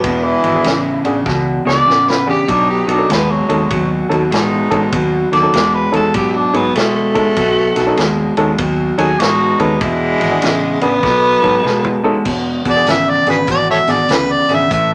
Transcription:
Already playing: B3
0.03 E1 E2 B2 G#3 D4 E4, kick, ride
0.24 E3
0.43 G#1 E2 B2 F#4 G#4, ride
0.55 D4 F#4 G#4
0.64 A1 E2 C#3, snare, ride
1.04 A1 E2 C#3 D4 F#4 G#4, ride
1.26 C#2 E2 B2, kick, snare
1.65 C#2 E2 B2 D4 F#4 G#4 D5, snare
1.86 A1 E2 C#3, snare
2.09 B4, snare
2.26 E2 C#3 D4 F#4 G4 G#4
2.47 B1 B2 F#3 A3 B3 D4 D#4, kick, ride
2.70 G4
2.87 B1 B2 F#3 D#4 A4, ride
2.91 D4
2.98 C#4 D#4 A4
3.09 D#2 B2 G#3 B3, snare, ride
3.31 F#3
3.49 D#2 B2 G#3 C#4 D#4 A4, ride
3.70 D#2 B2 F#3, kick, ride
4.09 D#2 B2 F#3 C#4 D#4 A4, ride
4.31 A1 B2 G#3 A3 B3 D#4, snare, ride
4.70 A1 B2 G#3 C#4 D#4 A4, kick, ride
4.92 D#2 B2 F#3, kick, ride
5.32 D#2 B2 F#3 D#4 A4 D5, snare, ride
5.42 C#4 D#4 A4
5.53 E2 B2 G#3, snare, ride
5.74 B4
5.92 E2 B2 G#3 C#4 D#4 A4, ride
6.14 G#2 B2 F#3 G4, kick, ride
6.36 D4
6.53 G#2 B2 F#3 B3 C#4 D#4 G#4, ride
6.75 B2 G#3 A3, snare, ride
6.95 A3
7.14 B2 G#3 C#4 D#4 A4, kick, ride
7.36 B1 B2 F#3 A3 B3 F#4, kick, ride
7.75 B1 B2 F#3 D#4 A4, snare, ride
7.86 C#4 D#4 A4
7.97 D#2 B2 G#3, snare, ride
8.37 D#2 B2 G#3 C#4 D#4 A4, ride
8.58 D#2 B2 F#3, kick, ride
8.98 D#2 B2 F#3 C#4 D#4 G#4 A4, ride
9.19 A1 B2 G#3 A3 B3 D#4 F#4, snare, ride
9.59 D#2 B2 G#3 B3 C#4 D#4 A4, kick, ride
9.80 E1 E2 B2 G#3 D4 E4, kick, ride
10.19 G#1 E2 B2 F#4 G#4, snare, ride
10.31 D4 F#4 G#4
10.41 A1 E2 C#3, snare, ride
10.81 A1 E2 C#3 B3 D4 F#4 G#4, ride
11.02 B1 B2 F#3 B3 D#4 A4, kick, snare
11.42 G#2 B2 F#3 C#4 D#4 A4, kick
11.63 B2 G#3, snare
11.84 floor tom
12.04 B2 G#3 C#4 D#4 A4
12.25 E1 E2 B2, kick, crash
12.65 E1 E2 B2 F#4 G#4, kick, closed hi-hat
12.70 D5
12.76 D4 F#4 G#4
12.86 G#1 E2 C#3 E5, snare, closed hi-hat
13.10 D5
13.26 G#1 E2 C#3 D4 F#4 G#4 B4, closed hi-hat
13.47 G#1 E2 B2, kick, snare, closed hi-hat
13.51 D5
13.71 A4 C#5 E5
13.87 G#1 E2 B2 D4 F#4 G#4, snare, closed hi-hat
13.92 D5
14.09 D2 E2 C#3, snare, closed hi-hat
14.13 B4
14.32 D5
14.49 G#1 E2 C#3 D4 F#4 G#4, snare, closed hi-hat
14.54 E5
14.70 A1 A2 E3 E5, kick, closed hi-hat

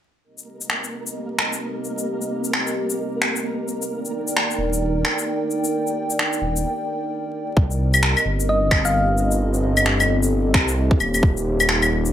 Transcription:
0.24 A#3 C4 G4 A#4 D#5
0.38 shaker
0.61 shaker
0.70 finger snap
0.84 shaker
1.07 shaker
1.39 finger snap
1.53 shaker
1.84 shaker
1.98 shaker
2.21 shaker
2.44 shaker
2.53 finger snap
2.67 shaker
2.90 shaker
3.22 finger snap
3.36 shaker
3.68 shaker
3.82 shaker
3.90 D#4 D5 G5
4.05 shaker
4.28 shaker
4.37 finger snap
4.51 shaker
4.58 D#1
4.73 shaker
5.05 finger snap
5.19 shaker
5.51 shaker
5.64 shaker
5.87 shaker
6.10 shaker
6.19 finger snap
6.33 shaker
6.42 D#1
6.56 shaker
7.56 C2 C4 G4 A#4 D#5, kick
7.71 shaker
7.94 claves, shaker
8.03 finger snap
8.17 claves, shaker
8.25 G1
8.40 shaker
8.49 D#5
8.71 G1, finger snap, kick, claves
8.85 F5, shaker
9.18 shaker
9.31 shaker
9.40 A4
9.54 shaker
9.77 claves, shaker
9.86 finger snap
10.00 claves, shaker
10.08 G1
10.23 shaker
10.54 C2, finger snap, kick
10.68 shaker
10.91 kick
11.00 D#1, claves, shaker
11.14 claves, shaker
11.23 A#3 D#4, kick
11.37 shaker
11.60 claves, shaker
11.69 finger snap
11.82 claves, shaker
11.92 D#1
12.05 shaker

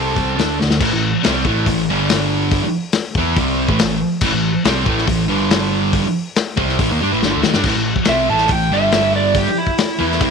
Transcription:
Already playing: C2 C3 G3 C4 A4
0.14 C2 C3 G3 C4, kick, open hi-hat
0.36 D2 D3 A3 D4, snare, open hi-hat
0.59 D2 D3 A3, snare
0.71 snare
0.80 A1 A2 E3, kick, crash
0.92 A1 A2 E3
1.23 C2 C3 G3 C4, snare, open hi-hat
1.45 A1 A2 E3 A3, kick
1.66 A1 A2 E3, kick, open hi-hat
1.90 G1 G2 D3 G3
2.09 snare, open hi-hat
2.52 kick, open hi-hat
2.64 muted distorted electric guitar stroke, muted picked electric bass stroke
2.92 snare, open hi-hat
3.15 E2 E3 B3, kick
3.19 E4
3.37 C2 C3 G3 C4, kick, open hi-hat
3.69 A1 A2 E3, kick
3.79 A1 A2 E3, snare, open hi-hat
4.21 A1 A2 E3, kick, crash
4.33 A1 A2 E3
4.65 C2 C3 G3 C4, snare, open hi-hat
4.86 A1 A2 E3 A3, kick
4.98 snare
5.08 A1 A2 E3, kick, open hi-hat
5.29 G1 G2 D3 G3
5.50 snare, open hi-hat
5.93 kick, open hi-hat
6.04 muted distorted electric guitar stroke, muted picked electric bass stroke
6.36 snare, open hi-hat
6.56 C2 C3 G3 C4, kick
6.69 snare
6.79 A1 A2 E3, kick, open hi-hat
6.90 D#2 D#3 A#3
7.02 G2 G3 D4
7.11 A1 A2 E3
7.23 G1 G2 D3, snare
7.32 D2 D3 A3
7.43 D#2 D#3 A#3, snare
7.54 G2 G3 D4, snare
7.63 A1 A2, kick, crash
7.68 E3
7.76 A1 A2 E3
7.96 kick
8.05 C2 C3 G3 E5, snare, open hi-hat
8.09 C4
8.29 A1 A2 E3 A3 A5
8.38 snare
8.48 A1 A2 E3, kick, open hi-hat
8.53 G5
8.71 G1 G2 D3 G3 E5
8.92 snare, open hi-hat
9.16 D5
9.34 G4, kick, open hi-hat
9.47 muted picked electric bass stroke, muted distorted electric guitar stroke
9.58 E4
9.67 kick
9.78 snare, open hi-hat
9.98 E2 E3 B3 E4
10.12 snare
10.21 C2 C3 G3 C4, kick, open hi-hat

